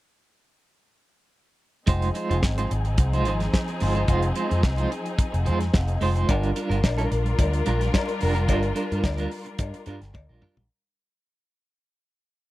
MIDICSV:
0, 0, Header, 1, 6, 480
1, 0, Start_track
1, 0, Tempo, 551978
1, 1625, Time_signature, 4, 2, 24, 8
1, 10873, End_track
2, 0, Start_track
2, 0, Title_t, "Clean electric guitar"
2, 0, Program_c, 0, 27
2, 1622, Note_on_c, 0, 56, 80
2, 1628, Note_on_c, 0, 63, 92
2, 1636, Note_on_c, 0, 65, 77
2, 1642, Note_on_c, 0, 72, 90
2, 1808, Note_off_c, 0, 56, 0
2, 1811, Note_off_c, 0, 63, 0
2, 1816, Note_off_c, 0, 65, 0
2, 1819, Note_off_c, 0, 72, 0
2, 1865, Note_on_c, 0, 56, 63
2, 1873, Note_on_c, 0, 63, 64
2, 1879, Note_on_c, 0, 65, 73
2, 1883, Note_on_c, 0, 72, 66
2, 1985, Note_off_c, 0, 72, 0
2, 1993, Note_off_c, 0, 65, 0
2, 1995, Note_on_c, 0, 72, 66
2, 1996, Note_off_c, 0, 63, 0
2, 1999, Note_off_c, 0, 56, 0
2, 2004, Note_on_c, 0, 65, 64
2, 2007, Note_on_c, 0, 63, 58
2, 2010, Note_on_c, 0, 56, 59
2, 2109, Note_off_c, 0, 56, 0
2, 2109, Note_off_c, 0, 63, 0
2, 2111, Note_off_c, 0, 65, 0
2, 2114, Note_off_c, 0, 72, 0
2, 2243, Note_on_c, 0, 72, 77
2, 2249, Note_on_c, 0, 65, 69
2, 2252, Note_on_c, 0, 63, 65
2, 2257, Note_on_c, 0, 56, 62
2, 2351, Note_off_c, 0, 56, 0
2, 2354, Note_off_c, 0, 63, 0
2, 2359, Note_off_c, 0, 65, 0
2, 2364, Note_off_c, 0, 72, 0
2, 2727, Note_on_c, 0, 72, 93
2, 2732, Note_on_c, 0, 65, 78
2, 2737, Note_on_c, 0, 63, 79
2, 2743, Note_on_c, 0, 56, 77
2, 2831, Note_off_c, 0, 56, 0
2, 2837, Note_off_c, 0, 63, 0
2, 2841, Note_on_c, 0, 56, 60
2, 2844, Note_off_c, 0, 65, 0
2, 2846, Note_off_c, 0, 72, 0
2, 2848, Note_on_c, 0, 63, 51
2, 2855, Note_on_c, 0, 65, 62
2, 2856, Note_on_c, 0, 72, 70
2, 2960, Note_off_c, 0, 72, 0
2, 2962, Note_off_c, 0, 65, 0
2, 2970, Note_off_c, 0, 63, 0
2, 2981, Note_off_c, 0, 56, 0
2, 3309, Note_on_c, 0, 56, 82
2, 3315, Note_on_c, 0, 63, 88
2, 3319, Note_on_c, 0, 65, 92
2, 3327, Note_on_c, 0, 72, 92
2, 3425, Note_off_c, 0, 72, 0
2, 3429, Note_off_c, 0, 65, 0
2, 3434, Note_off_c, 0, 63, 0
2, 3435, Note_on_c, 0, 72, 58
2, 3440, Note_on_c, 0, 65, 56
2, 3442, Note_off_c, 0, 56, 0
2, 3444, Note_on_c, 0, 63, 51
2, 3452, Note_on_c, 0, 56, 50
2, 3531, Note_off_c, 0, 56, 0
2, 3534, Note_off_c, 0, 63, 0
2, 3541, Note_off_c, 0, 65, 0
2, 3542, Note_on_c, 0, 56, 76
2, 3545, Note_on_c, 0, 63, 79
2, 3546, Note_off_c, 0, 72, 0
2, 3552, Note_on_c, 0, 65, 91
2, 3556, Note_on_c, 0, 72, 99
2, 3728, Note_off_c, 0, 56, 0
2, 3729, Note_off_c, 0, 63, 0
2, 3733, Note_off_c, 0, 65, 0
2, 3735, Note_off_c, 0, 72, 0
2, 3782, Note_on_c, 0, 56, 57
2, 3789, Note_on_c, 0, 63, 60
2, 3793, Note_on_c, 0, 65, 64
2, 3795, Note_on_c, 0, 72, 70
2, 3898, Note_off_c, 0, 72, 0
2, 3906, Note_off_c, 0, 65, 0
2, 3909, Note_on_c, 0, 72, 68
2, 3912, Note_off_c, 0, 63, 0
2, 3914, Note_off_c, 0, 56, 0
2, 3916, Note_on_c, 0, 65, 68
2, 3923, Note_on_c, 0, 63, 57
2, 3924, Note_on_c, 0, 56, 58
2, 4015, Note_off_c, 0, 56, 0
2, 4016, Note_off_c, 0, 63, 0
2, 4020, Note_off_c, 0, 65, 0
2, 4024, Note_off_c, 0, 72, 0
2, 4150, Note_on_c, 0, 72, 78
2, 4156, Note_on_c, 0, 65, 79
2, 4162, Note_on_c, 0, 63, 81
2, 4165, Note_on_c, 0, 56, 69
2, 4253, Note_off_c, 0, 56, 0
2, 4257, Note_off_c, 0, 63, 0
2, 4263, Note_off_c, 0, 72, 0
2, 4264, Note_off_c, 0, 65, 0
2, 4741, Note_on_c, 0, 56, 86
2, 4744, Note_on_c, 0, 63, 86
2, 4748, Note_on_c, 0, 65, 89
2, 4755, Note_on_c, 0, 72, 101
2, 4855, Note_off_c, 0, 72, 0
2, 4864, Note_off_c, 0, 65, 0
2, 4866, Note_off_c, 0, 63, 0
2, 4926, Note_off_c, 0, 56, 0
2, 5224, Note_on_c, 0, 56, 75
2, 5233, Note_on_c, 0, 63, 76
2, 5238, Note_on_c, 0, 65, 83
2, 5240, Note_on_c, 0, 72, 81
2, 5343, Note_off_c, 0, 72, 0
2, 5350, Note_off_c, 0, 65, 0
2, 5353, Note_on_c, 0, 72, 62
2, 5356, Note_off_c, 0, 63, 0
2, 5360, Note_off_c, 0, 56, 0
2, 5360, Note_on_c, 0, 65, 54
2, 5367, Note_on_c, 0, 63, 52
2, 5370, Note_on_c, 0, 56, 57
2, 5466, Note_off_c, 0, 56, 0
2, 5468, Note_off_c, 0, 65, 0
2, 5470, Note_on_c, 0, 55, 82
2, 5472, Note_off_c, 0, 63, 0
2, 5475, Note_on_c, 0, 62, 92
2, 5479, Note_on_c, 0, 65, 89
2, 5482, Note_off_c, 0, 72, 0
2, 5485, Note_on_c, 0, 70, 96
2, 5650, Note_off_c, 0, 55, 0
2, 5653, Note_off_c, 0, 62, 0
2, 5654, Note_off_c, 0, 65, 0
2, 5658, Note_off_c, 0, 70, 0
2, 5705, Note_on_c, 0, 55, 68
2, 5709, Note_on_c, 0, 62, 69
2, 5713, Note_on_c, 0, 65, 71
2, 5721, Note_on_c, 0, 70, 60
2, 5813, Note_off_c, 0, 70, 0
2, 5821, Note_off_c, 0, 65, 0
2, 5824, Note_off_c, 0, 62, 0
2, 5824, Note_on_c, 0, 70, 61
2, 5827, Note_off_c, 0, 55, 0
2, 5831, Note_on_c, 0, 65, 56
2, 5834, Note_on_c, 0, 62, 55
2, 5838, Note_on_c, 0, 55, 53
2, 5936, Note_off_c, 0, 55, 0
2, 5940, Note_off_c, 0, 62, 0
2, 5946, Note_off_c, 0, 70, 0
2, 5947, Note_off_c, 0, 65, 0
2, 6066, Note_on_c, 0, 70, 87
2, 6073, Note_on_c, 0, 65, 84
2, 6076, Note_on_c, 0, 62, 65
2, 6079, Note_on_c, 0, 55, 64
2, 6170, Note_off_c, 0, 55, 0
2, 6173, Note_off_c, 0, 65, 0
2, 6174, Note_off_c, 0, 62, 0
2, 6178, Note_off_c, 0, 70, 0
2, 6661, Note_on_c, 0, 55, 76
2, 6664, Note_on_c, 0, 62, 81
2, 6668, Note_on_c, 0, 65, 92
2, 6677, Note_on_c, 0, 70, 88
2, 6786, Note_off_c, 0, 70, 0
2, 6795, Note_off_c, 0, 65, 0
2, 6797, Note_off_c, 0, 62, 0
2, 6845, Note_off_c, 0, 55, 0
2, 7135, Note_on_c, 0, 55, 73
2, 7141, Note_on_c, 0, 62, 91
2, 7146, Note_on_c, 0, 65, 88
2, 7153, Note_on_c, 0, 70, 90
2, 7250, Note_off_c, 0, 70, 0
2, 7255, Note_off_c, 0, 65, 0
2, 7260, Note_off_c, 0, 62, 0
2, 7261, Note_on_c, 0, 70, 68
2, 7264, Note_off_c, 0, 55, 0
2, 7265, Note_on_c, 0, 65, 61
2, 7270, Note_on_c, 0, 62, 53
2, 7274, Note_on_c, 0, 55, 54
2, 7362, Note_off_c, 0, 55, 0
2, 7364, Note_off_c, 0, 62, 0
2, 7372, Note_off_c, 0, 65, 0
2, 7372, Note_on_c, 0, 55, 87
2, 7375, Note_on_c, 0, 62, 89
2, 7377, Note_off_c, 0, 70, 0
2, 7383, Note_on_c, 0, 65, 92
2, 7388, Note_on_c, 0, 70, 88
2, 7561, Note_off_c, 0, 55, 0
2, 7562, Note_off_c, 0, 62, 0
2, 7566, Note_off_c, 0, 65, 0
2, 7568, Note_off_c, 0, 70, 0
2, 7611, Note_on_c, 0, 55, 59
2, 7616, Note_on_c, 0, 62, 68
2, 7619, Note_on_c, 0, 65, 65
2, 7626, Note_on_c, 0, 70, 75
2, 7732, Note_off_c, 0, 70, 0
2, 7741, Note_off_c, 0, 65, 0
2, 7742, Note_on_c, 0, 70, 72
2, 7746, Note_off_c, 0, 62, 0
2, 7751, Note_on_c, 0, 65, 65
2, 7752, Note_off_c, 0, 55, 0
2, 7757, Note_on_c, 0, 62, 56
2, 7763, Note_on_c, 0, 55, 58
2, 7848, Note_off_c, 0, 55, 0
2, 7851, Note_off_c, 0, 62, 0
2, 7858, Note_off_c, 0, 65, 0
2, 7858, Note_off_c, 0, 70, 0
2, 7975, Note_on_c, 0, 70, 81
2, 7985, Note_on_c, 0, 65, 75
2, 7990, Note_on_c, 0, 62, 74
2, 7994, Note_on_c, 0, 55, 69
2, 8092, Note_off_c, 0, 55, 0
2, 8097, Note_off_c, 0, 62, 0
2, 8098, Note_off_c, 0, 65, 0
2, 8099, Note_off_c, 0, 70, 0
2, 8575, Note_on_c, 0, 55, 76
2, 8578, Note_on_c, 0, 62, 79
2, 8585, Note_on_c, 0, 65, 89
2, 8590, Note_on_c, 0, 70, 84
2, 8693, Note_off_c, 0, 70, 0
2, 8699, Note_off_c, 0, 65, 0
2, 8703, Note_off_c, 0, 62, 0
2, 8763, Note_off_c, 0, 55, 0
2, 8948, Note_on_c, 0, 70, 65
2, 8951, Note_on_c, 0, 65, 65
2, 8958, Note_on_c, 0, 62, 54
2, 8963, Note_on_c, 0, 55, 51
2, 9045, Note_off_c, 0, 55, 0
2, 9048, Note_off_c, 0, 62, 0
2, 9054, Note_off_c, 0, 65, 0
2, 9055, Note_on_c, 0, 55, 82
2, 9058, Note_on_c, 0, 62, 78
2, 9061, Note_off_c, 0, 70, 0
2, 9065, Note_on_c, 0, 65, 91
2, 9071, Note_on_c, 0, 70, 89
2, 9174, Note_off_c, 0, 70, 0
2, 9180, Note_off_c, 0, 65, 0
2, 9183, Note_off_c, 0, 62, 0
2, 9244, Note_off_c, 0, 55, 0
2, 10873, End_track
3, 0, Start_track
3, 0, Title_t, "String section"
3, 0, Program_c, 1, 48
3, 1634, Note_on_c, 1, 68, 73
3, 1635, Note_on_c, 1, 63, 70
3, 1636, Note_on_c, 1, 60, 68
3, 1643, Note_on_c, 1, 53, 73
3, 5431, Note_off_c, 1, 68, 0
3, 5432, Note_off_c, 1, 60, 0
3, 5432, Note_off_c, 1, 63, 0
3, 5436, Note_off_c, 1, 53, 0
3, 5444, Note_on_c, 1, 70, 86
3, 5451, Note_on_c, 1, 62, 68
3, 5452, Note_on_c, 1, 55, 79
3, 5452, Note_on_c, 1, 65, 66
3, 9259, Note_off_c, 1, 70, 0
3, 9262, Note_off_c, 1, 62, 0
3, 9263, Note_off_c, 1, 55, 0
3, 9263, Note_off_c, 1, 65, 0
3, 10873, End_track
4, 0, Start_track
4, 0, Title_t, "Picked electric bass"
4, 0, Program_c, 2, 34
4, 1632, Note_on_c, 2, 29, 108
4, 1819, Note_off_c, 2, 29, 0
4, 2007, Note_on_c, 2, 29, 99
4, 2091, Note_off_c, 2, 29, 0
4, 2115, Note_on_c, 2, 32, 82
4, 2302, Note_off_c, 2, 32, 0
4, 2358, Note_on_c, 2, 32, 83
4, 2596, Note_off_c, 2, 32, 0
4, 2596, Note_on_c, 2, 36, 100
4, 2835, Note_off_c, 2, 36, 0
4, 2835, Note_on_c, 2, 32, 92
4, 3021, Note_off_c, 2, 32, 0
4, 3323, Note_on_c, 2, 31, 85
4, 3506, Note_off_c, 2, 31, 0
4, 3555, Note_on_c, 2, 29, 115
4, 3741, Note_off_c, 2, 29, 0
4, 3927, Note_on_c, 2, 41, 96
4, 4010, Note_off_c, 2, 41, 0
4, 4029, Note_on_c, 2, 36, 83
4, 4217, Note_off_c, 2, 36, 0
4, 4644, Note_on_c, 2, 29, 78
4, 4759, Note_on_c, 2, 41, 105
4, 4772, Note_off_c, 2, 29, 0
4, 4942, Note_off_c, 2, 41, 0
4, 4994, Note_on_c, 2, 29, 102
4, 5179, Note_off_c, 2, 29, 0
4, 5231, Note_on_c, 2, 29, 82
4, 5417, Note_off_c, 2, 29, 0
4, 5473, Note_on_c, 2, 31, 121
4, 5658, Note_off_c, 2, 31, 0
4, 5827, Note_on_c, 2, 31, 85
4, 5917, Note_off_c, 2, 31, 0
4, 5949, Note_on_c, 2, 34, 86
4, 6135, Note_off_c, 2, 34, 0
4, 6189, Note_on_c, 2, 34, 89
4, 6375, Note_off_c, 2, 34, 0
4, 6426, Note_on_c, 2, 38, 98
4, 6614, Note_off_c, 2, 38, 0
4, 6672, Note_on_c, 2, 34, 88
4, 6857, Note_off_c, 2, 34, 0
4, 7157, Note_on_c, 2, 29, 86
4, 7381, Note_off_c, 2, 29, 0
4, 7381, Note_on_c, 2, 31, 109
4, 7571, Note_off_c, 2, 31, 0
4, 7757, Note_on_c, 2, 43, 82
4, 7842, Note_off_c, 2, 43, 0
4, 7857, Note_on_c, 2, 38, 83
4, 8048, Note_off_c, 2, 38, 0
4, 8344, Note_on_c, 2, 43, 100
4, 8444, Note_off_c, 2, 43, 0
4, 8584, Note_on_c, 2, 43, 98
4, 8684, Note_off_c, 2, 43, 0
4, 8708, Note_on_c, 2, 31, 76
4, 8797, Note_off_c, 2, 31, 0
4, 8829, Note_on_c, 2, 38, 90
4, 8927, Note_off_c, 2, 38, 0
4, 8950, Note_on_c, 2, 34, 87
4, 9039, Note_off_c, 2, 34, 0
4, 9190, Note_on_c, 2, 34, 89
4, 9279, Note_off_c, 2, 34, 0
4, 10873, End_track
5, 0, Start_track
5, 0, Title_t, "Muted clean electric guitar strokes"
5, 2361, Note_on_c, 9, 29, 31
5, 2448, Note_off_c, 9, 29, 0
5, 2483, Note_on_c, 9, 29, 48
5, 2570, Note_off_c, 9, 29, 0
5, 2601, Note_on_c, 9, 29, 41
5, 2688, Note_off_c, 9, 29, 0
5, 2970, Note_on_c, 9, 29, 44
5, 3057, Note_off_c, 9, 29, 0
5, 3081, Note_on_c, 9, 29, 38
5, 3168, Note_off_c, 9, 29, 0
5, 3208, Note_on_c, 9, 29, 55
5, 3295, Note_off_c, 9, 29, 0
5, 4025, Note_on_c, 9, 29, 42
5, 4112, Note_off_c, 9, 29, 0
5, 4263, Note_on_c, 9, 29, 46
5, 4350, Note_off_c, 9, 29, 0
5, 4392, Note_on_c, 9, 29, 35
5, 4479, Note_off_c, 9, 29, 0
5, 4505, Note_on_c, 9, 29, 48
5, 4592, Note_off_c, 9, 29, 0
5, 4629, Note_on_c, 9, 29, 50
5, 4716, Note_off_c, 9, 29, 0
5, 4866, Note_on_c, 9, 29, 45
5, 4953, Note_off_c, 9, 29, 0
5, 4988, Note_on_c, 9, 29, 42
5, 5075, Note_off_c, 9, 29, 0
5, 5118, Note_on_c, 9, 29, 54
5, 5205, Note_off_c, 9, 29, 0
5, 5947, Note_on_c, 9, 29, 44
5, 6034, Note_off_c, 9, 29, 0
5, 6181, Note_on_c, 9, 29, 40
5, 6268, Note_off_c, 9, 29, 0
5, 6316, Note_on_c, 9, 29, 44
5, 6403, Note_off_c, 9, 29, 0
5, 6429, Note_on_c, 9, 29, 44
5, 6516, Note_off_c, 9, 29, 0
5, 6553, Note_on_c, 9, 29, 45
5, 6640, Note_off_c, 9, 29, 0
5, 6796, Note_on_c, 9, 29, 44
5, 6883, Note_off_c, 9, 29, 0
5, 6901, Note_on_c, 9, 29, 45
5, 6988, Note_off_c, 9, 29, 0
5, 7031, Note_on_c, 9, 29, 41
5, 7118, Note_off_c, 9, 29, 0
5, 7858, Note_on_c, 9, 29, 46
5, 7945, Note_off_c, 9, 29, 0
5, 8218, Note_on_c, 9, 29, 49
5, 8305, Note_off_c, 9, 29, 0
5, 8344, Note_on_c, 9, 29, 33
5, 8431, Note_off_c, 9, 29, 0
5, 8471, Note_on_c, 9, 29, 54
5, 8557, Note_off_c, 9, 29, 0
5, 8713, Note_on_c, 9, 29, 43
5, 8800, Note_off_c, 9, 29, 0
5, 8812, Note_on_c, 9, 29, 43
5, 8899, Note_off_c, 9, 29, 0
5, 9184, Note_on_c, 9, 29, 50
5, 9271, Note_off_c, 9, 29, 0
5, 10873, End_track
6, 0, Start_track
6, 0, Title_t, "Drums"
6, 1626, Note_on_c, 9, 42, 77
6, 1633, Note_on_c, 9, 36, 98
6, 1713, Note_off_c, 9, 42, 0
6, 1720, Note_off_c, 9, 36, 0
6, 1759, Note_on_c, 9, 42, 47
6, 1845, Note_off_c, 9, 42, 0
6, 1870, Note_on_c, 9, 42, 64
6, 1957, Note_off_c, 9, 42, 0
6, 2008, Note_on_c, 9, 42, 45
6, 2095, Note_off_c, 9, 42, 0
6, 2110, Note_on_c, 9, 38, 104
6, 2113, Note_on_c, 9, 36, 98
6, 2197, Note_off_c, 9, 38, 0
6, 2200, Note_off_c, 9, 36, 0
6, 2242, Note_on_c, 9, 42, 57
6, 2329, Note_off_c, 9, 42, 0
6, 2357, Note_on_c, 9, 42, 67
6, 2444, Note_off_c, 9, 42, 0
6, 2477, Note_on_c, 9, 42, 37
6, 2564, Note_off_c, 9, 42, 0
6, 2589, Note_on_c, 9, 42, 84
6, 2592, Note_on_c, 9, 36, 121
6, 2676, Note_off_c, 9, 42, 0
6, 2679, Note_off_c, 9, 36, 0
6, 2725, Note_on_c, 9, 42, 48
6, 2812, Note_off_c, 9, 42, 0
6, 2829, Note_on_c, 9, 42, 71
6, 2916, Note_off_c, 9, 42, 0
6, 2959, Note_on_c, 9, 42, 40
6, 2965, Note_on_c, 9, 38, 34
6, 3046, Note_off_c, 9, 42, 0
6, 3052, Note_off_c, 9, 38, 0
6, 3074, Note_on_c, 9, 38, 110
6, 3076, Note_on_c, 9, 36, 97
6, 3161, Note_off_c, 9, 38, 0
6, 3163, Note_off_c, 9, 36, 0
6, 3200, Note_on_c, 9, 42, 40
6, 3287, Note_off_c, 9, 42, 0
6, 3307, Note_on_c, 9, 46, 65
6, 3394, Note_off_c, 9, 46, 0
6, 3434, Note_on_c, 9, 42, 40
6, 3521, Note_off_c, 9, 42, 0
6, 3548, Note_on_c, 9, 42, 72
6, 3550, Note_on_c, 9, 36, 110
6, 3635, Note_off_c, 9, 42, 0
6, 3637, Note_off_c, 9, 36, 0
6, 3673, Note_on_c, 9, 42, 46
6, 3760, Note_off_c, 9, 42, 0
6, 3787, Note_on_c, 9, 42, 73
6, 3874, Note_off_c, 9, 42, 0
6, 3923, Note_on_c, 9, 42, 47
6, 4010, Note_off_c, 9, 42, 0
6, 4028, Note_on_c, 9, 36, 109
6, 4029, Note_on_c, 9, 38, 108
6, 4115, Note_off_c, 9, 36, 0
6, 4115, Note_off_c, 9, 38, 0
6, 4157, Note_on_c, 9, 42, 51
6, 4244, Note_off_c, 9, 42, 0
6, 4278, Note_on_c, 9, 42, 74
6, 4365, Note_off_c, 9, 42, 0
6, 4397, Note_on_c, 9, 42, 42
6, 4484, Note_off_c, 9, 42, 0
6, 4509, Note_on_c, 9, 36, 119
6, 4510, Note_on_c, 9, 42, 92
6, 4596, Note_off_c, 9, 36, 0
6, 4597, Note_off_c, 9, 42, 0
6, 4644, Note_on_c, 9, 42, 49
6, 4731, Note_off_c, 9, 42, 0
6, 4749, Note_on_c, 9, 42, 68
6, 4836, Note_off_c, 9, 42, 0
6, 4873, Note_on_c, 9, 42, 45
6, 4879, Note_on_c, 9, 38, 37
6, 4960, Note_off_c, 9, 42, 0
6, 4966, Note_off_c, 9, 38, 0
6, 4987, Note_on_c, 9, 38, 107
6, 4992, Note_on_c, 9, 36, 109
6, 5074, Note_off_c, 9, 38, 0
6, 5078, Note_off_c, 9, 36, 0
6, 5114, Note_on_c, 9, 42, 37
6, 5201, Note_off_c, 9, 42, 0
6, 5227, Note_on_c, 9, 46, 59
6, 5314, Note_off_c, 9, 46, 0
6, 5354, Note_on_c, 9, 42, 45
6, 5441, Note_off_c, 9, 42, 0
6, 5467, Note_on_c, 9, 42, 65
6, 5468, Note_on_c, 9, 36, 109
6, 5469, Note_on_c, 9, 56, 87
6, 5554, Note_off_c, 9, 42, 0
6, 5555, Note_off_c, 9, 36, 0
6, 5556, Note_off_c, 9, 56, 0
6, 5596, Note_on_c, 9, 42, 42
6, 5683, Note_off_c, 9, 42, 0
6, 5704, Note_on_c, 9, 42, 74
6, 5791, Note_off_c, 9, 42, 0
6, 5838, Note_on_c, 9, 42, 45
6, 5925, Note_off_c, 9, 42, 0
6, 5945, Note_on_c, 9, 36, 101
6, 5945, Note_on_c, 9, 38, 113
6, 5954, Note_on_c, 9, 56, 78
6, 6032, Note_off_c, 9, 36, 0
6, 6032, Note_off_c, 9, 38, 0
6, 6041, Note_off_c, 9, 56, 0
6, 6073, Note_on_c, 9, 42, 54
6, 6160, Note_off_c, 9, 42, 0
6, 6188, Note_on_c, 9, 42, 73
6, 6275, Note_off_c, 9, 42, 0
6, 6311, Note_on_c, 9, 42, 41
6, 6398, Note_off_c, 9, 42, 0
6, 6423, Note_on_c, 9, 36, 111
6, 6423, Note_on_c, 9, 42, 89
6, 6430, Note_on_c, 9, 56, 68
6, 6510, Note_off_c, 9, 36, 0
6, 6510, Note_off_c, 9, 42, 0
6, 6517, Note_off_c, 9, 56, 0
6, 6552, Note_on_c, 9, 42, 55
6, 6639, Note_off_c, 9, 42, 0
6, 6660, Note_on_c, 9, 42, 69
6, 6747, Note_off_c, 9, 42, 0
6, 6791, Note_on_c, 9, 42, 45
6, 6797, Note_on_c, 9, 38, 35
6, 6878, Note_off_c, 9, 42, 0
6, 6884, Note_off_c, 9, 38, 0
6, 6903, Note_on_c, 9, 38, 121
6, 6905, Note_on_c, 9, 36, 106
6, 6909, Note_on_c, 9, 56, 77
6, 6990, Note_off_c, 9, 38, 0
6, 6992, Note_off_c, 9, 36, 0
6, 6996, Note_off_c, 9, 56, 0
6, 7032, Note_on_c, 9, 42, 40
6, 7119, Note_off_c, 9, 42, 0
6, 7136, Note_on_c, 9, 46, 66
6, 7223, Note_off_c, 9, 46, 0
6, 7272, Note_on_c, 9, 42, 43
6, 7359, Note_off_c, 9, 42, 0
6, 7378, Note_on_c, 9, 42, 67
6, 7381, Note_on_c, 9, 36, 101
6, 7388, Note_on_c, 9, 56, 80
6, 7465, Note_off_c, 9, 42, 0
6, 7468, Note_off_c, 9, 36, 0
6, 7475, Note_off_c, 9, 56, 0
6, 7502, Note_on_c, 9, 42, 45
6, 7589, Note_off_c, 9, 42, 0
6, 7616, Note_on_c, 9, 42, 66
6, 7703, Note_off_c, 9, 42, 0
6, 7755, Note_on_c, 9, 42, 46
6, 7842, Note_off_c, 9, 42, 0
6, 7857, Note_on_c, 9, 38, 108
6, 7859, Note_on_c, 9, 36, 109
6, 7868, Note_on_c, 9, 56, 83
6, 7944, Note_off_c, 9, 38, 0
6, 7946, Note_off_c, 9, 36, 0
6, 7955, Note_off_c, 9, 56, 0
6, 7984, Note_on_c, 9, 42, 53
6, 8071, Note_off_c, 9, 42, 0
6, 8099, Note_on_c, 9, 46, 64
6, 8186, Note_off_c, 9, 46, 0
6, 8227, Note_on_c, 9, 42, 41
6, 8314, Note_off_c, 9, 42, 0
6, 8336, Note_on_c, 9, 42, 98
6, 8339, Note_on_c, 9, 36, 127
6, 8342, Note_on_c, 9, 56, 64
6, 8423, Note_off_c, 9, 42, 0
6, 8426, Note_off_c, 9, 36, 0
6, 8429, Note_off_c, 9, 56, 0
6, 8468, Note_on_c, 9, 42, 45
6, 8555, Note_off_c, 9, 42, 0
6, 8573, Note_on_c, 9, 42, 70
6, 8660, Note_off_c, 9, 42, 0
6, 8709, Note_on_c, 9, 42, 39
6, 8714, Note_on_c, 9, 38, 30
6, 8796, Note_off_c, 9, 42, 0
6, 8801, Note_off_c, 9, 38, 0
6, 8818, Note_on_c, 9, 48, 59
6, 8824, Note_on_c, 9, 36, 107
6, 8824, Note_on_c, 9, 56, 72
6, 8905, Note_off_c, 9, 48, 0
6, 8911, Note_off_c, 9, 36, 0
6, 8911, Note_off_c, 9, 56, 0
6, 9061, Note_on_c, 9, 45, 80
6, 9148, Note_off_c, 9, 45, 0
6, 9192, Note_on_c, 9, 43, 89
6, 9279, Note_off_c, 9, 43, 0
6, 10873, End_track
0, 0, End_of_file